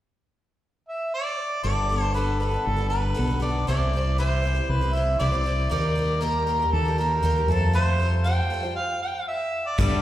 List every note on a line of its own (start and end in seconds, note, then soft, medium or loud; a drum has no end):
0.89 1.13 E5 medium
1.14 1.62 D5 medium
1.63 2.56 G1 medium
1.63 1.88 G3 medium
1.63 1.90 B3 medium
1.63 1.89 D4 medium
1.63 1.91 A4 medium
1.63 2.12 D5 medium
1.89 2.13 G3 soft
1.89 2.15 B3 soft
1.89 2.14 D4 soft
1.89 2.16 A4 medium
2.14 2.39 G3 medium
2.14 2.41 B3 medium
2.14 2.39 D4 medium
2.14 2.42 A4 medium
2.14 2.39 B4 medium
2.40 2.53 G3 soft
2.40 2.52 B3 medium
2.40 2.54 D4 soft
2.40 2.50 A4 soft
2.40 2.68 B4 medium
2.51 2.77 B3 soft
2.51 2.75 A4 soft
2.56 2.79 D4 soft
2.67 3.12 G1 medium
2.67 2.89 A4 medium
2.77 2.92 B3 soft
2.77 2.90 D4 soft
2.77 2.91 A4 soft
2.89 3.13 G3 medium
2.89 3.14 B3 medium
2.89 3.14 D4 medium
2.89 3.38 B4 medium
2.93 3.16 A4 soft
3.14 3.29 G3 medium
3.14 3.29 B3 medium
3.14 3.29 D4 medium
3.14 3.26 A4 medium
3.19 3.64 B1 medium
3.27 3.41 B3 soft
3.27 3.41 A4 soft
3.31 3.40 D4 soft
3.40 3.67 G3 medium
3.40 3.68 B3 medium
3.40 3.67 D4 medium
3.40 3.68 A4 medium
3.40 3.66 D5 medium
3.67 4.60 C2 medium
3.67 3.93 C3 medium
3.67 3.94 E3 medium
3.67 3.92 G3 medium
3.67 3.93 C4 medium
3.67 3.94 E4 medium
3.67 3.95 C5 medium
3.67 4.15 D5 medium
3.93 4.18 G3 soft
3.93 4.18 C4 soft
3.93 4.19 E4 medium
3.93 4.19 C5 medium
4.18 4.44 C3 medium
4.18 4.44 E3 medium
4.18 4.42 G3 medium
4.18 4.44 C4 medium
4.18 4.45 E4 medium
4.18 4.72 C5 medium
4.18 4.45 C5 medium
4.43 4.56 G3 soft
4.43 4.56 C4 medium
4.43 4.55 E4 soft
4.43 4.53 C5 medium
4.54 4.82 C4 soft
4.54 4.81 E4 soft
4.54 4.80 C5 soft
4.59 4.83 G3 soft
4.69 5.15 C2 medium
4.69 4.95 B4 medium
4.81 4.92 G3 soft
4.81 4.94 C4 soft
4.81 4.95 E4 soft
4.81 4.95 C5 soft
4.93 5.19 G3 soft
4.93 5.19 C4 medium
4.93 5.19 E4 medium
4.93 5.19 E5 medium
4.97 5.20 C5 medium
5.19 5.66 C2 medium
5.19 5.33 C3 medium
5.19 5.33 E3 medium
5.19 5.33 G3 medium
5.19 5.33 C4 medium
5.19 5.32 E4 medium
5.19 5.30 C5 medium
5.19 5.67 D5 medium
5.31 5.42 G3 soft
5.31 5.45 C4 soft
5.31 5.45 E4 soft
5.31 5.45 C5 soft
5.44 5.70 G3 soft
5.44 5.71 C4 medium
5.44 5.71 E4 medium
5.44 5.72 C5 medium
5.69 6.63 D#2 medium
5.69 5.96 D#3 medium
5.69 5.96 G3 medium
5.69 5.94 A#3 medium
5.69 5.97 G4 medium
5.69 5.97 A#4 medium
5.69 6.23 D5 medium
5.95 6.21 G3 medium
5.95 6.20 A#3 soft
5.95 6.21 G4 medium
5.95 6.22 A#4 medium
6.21 6.47 D#3 medium
6.21 6.47 G3 medium
6.21 6.46 A#3 medium
6.21 6.48 G4 medium
6.21 6.45 A#4 medium
6.21 6.48 A#4 medium
6.45 6.61 G3 soft
6.45 6.60 A#3 medium
6.45 6.61 G4 medium
6.45 6.70 A#4 medium
6.50 6.58 A#4 medium
6.60 6.87 G3 soft
6.60 6.86 G4 soft
6.60 6.84 A#4 soft
6.72 7.19 D#2 medium
6.72 6.99 A4 medium
6.85 6.98 G3 soft
6.85 6.99 G4 soft
6.85 6.98 A#4 soft
6.98 7.22 G3 medium
6.98 7.22 A#3 medium
6.98 7.23 G4 medium
6.98 7.51 A#4 medium
6.98 7.24 A#4 medium
7.22 7.47 D#2 medium
7.22 7.36 D#3 medium
7.22 7.37 G3 medium
7.22 7.36 A#3 medium
7.22 7.37 G4 medium
7.22 7.35 A#4 medium
7.36 7.48 G3 soft
7.36 7.50 G4 soft
7.36 7.49 A#4 soft
7.47 8.40 F2 medium
7.47 7.74 G3 soft
7.47 7.73 A3 medium
7.47 7.75 F4 medium
7.47 7.74 A4 medium
7.52 7.75 C5 medium
7.73 8.00 F3 medium
7.73 8.00 G3 medium
7.73 7.98 A3 medium
7.73 8.01 F4 medium
7.73 8.10 C5 medium
7.73 8.01 C5 medium
7.99 8.25 G3 soft
7.99 8.24 A3 medium
7.99 8.25 F4 medium
7.99 8.26 C5 medium
8.24 8.51 F3 medium
8.24 8.50 G3 medium
8.24 8.49 A3 medium
8.24 8.51 F4 medium
8.24 8.52 C5 medium
8.24 8.73 G5 medium
8.50 8.64 G3 medium
8.50 8.64 A3 medium
8.50 8.64 F4 soft
8.50 8.62 C5 medium
8.63 8.78 G3 soft
8.63 8.77 F4 soft
8.63 8.76 C5 soft
8.76 9.00 F5 medium
9.02 9.26 G5 medium
9.28 9.69 E5 medium
9.67 10.02 D5 medium
9.78 10.02 G2 medium
9.78 10.02 G3 medium
9.78 10.02 B3 medium
9.78 10.02 D4 medium
9.78 10.02 A4 medium
9.78 kick medium
9.78 crash medium